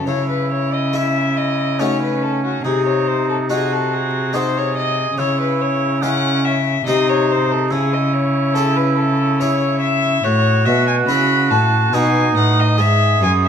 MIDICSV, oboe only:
0, 0, Header, 1, 2, 480
1, 0, Start_track
1, 0, Tempo, 857143
1, 40, Time_signature, 3, 2, 24, 8
1, 1480, Tempo, 846262
1, 7629, End_track
2, 0, Start_track
2, 0, Title_t, "Oboe"
2, 0, Program_c, 0, 68
2, 41, Note_on_c, 0, 64, 56
2, 1008, Note_on_c, 0, 61, 52
2, 1016, Note_off_c, 0, 64, 0
2, 1478, Note_off_c, 0, 61, 0
2, 1481, Note_on_c, 0, 63, 55
2, 1951, Note_off_c, 0, 63, 0
2, 1966, Note_on_c, 0, 66, 56
2, 2446, Note_on_c, 0, 68, 61
2, 2454, Note_off_c, 0, 66, 0
2, 2926, Note_on_c, 0, 64, 56
2, 2934, Note_off_c, 0, 68, 0
2, 3399, Note_on_c, 0, 61, 57
2, 3408, Note_off_c, 0, 64, 0
2, 3721, Note_off_c, 0, 61, 0
2, 3875, Note_on_c, 0, 63, 55
2, 4351, Note_on_c, 0, 64, 70
2, 4360, Note_off_c, 0, 63, 0
2, 5788, Note_off_c, 0, 64, 0
2, 5792, Note_on_c, 0, 66, 75
2, 6754, Note_on_c, 0, 63, 68
2, 6762, Note_off_c, 0, 66, 0
2, 7227, Note_off_c, 0, 63, 0
2, 7230, Note_on_c, 0, 68, 80
2, 7629, Note_off_c, 0, 68, 0
2, 7629, End_track
0, 0, End_of_file